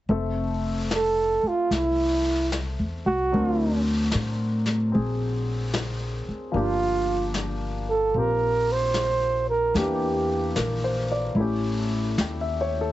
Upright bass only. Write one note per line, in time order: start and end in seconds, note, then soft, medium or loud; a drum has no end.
0.09 1.40 F1 medium
1.43 muted upright bass stroke soft
1.70 2.75 C2 medium
2.79 3.04 E2 medium
3.06 3.31 C2 soft
3.34 4.09 D2 medium
4.14 4.90 A2 medium
4.95 6.23 A#1 medium
6.28 muted upright bass stroke soft
6.54 8.11 G1 medium
8.14 9.71 A#1 medium
9.74 10.52 E2 medium
10.56 11.33 A#1 medium
11.35 12.13 A1 medium
12.17 12.92 D#2 medium